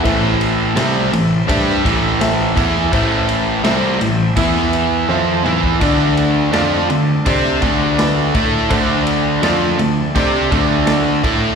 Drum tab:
RD |x-x-x-x-x-x-x-x-|x-x-x-x-x-x-----|x-x-x-x-x-x-x-x-|x-x-x-x-x-x-x-x-|
SD |----o----o--o--o|----o----o------|----o----o--o---|----o-------o---|
T1 |----------------|------------o---|----------------|----------------|
T2 |----------------|--------------o-|----------------|----------------|
BD |o-------o-o---o-|o-------o------o|o-------o-o---o-|o-------o-o---o-|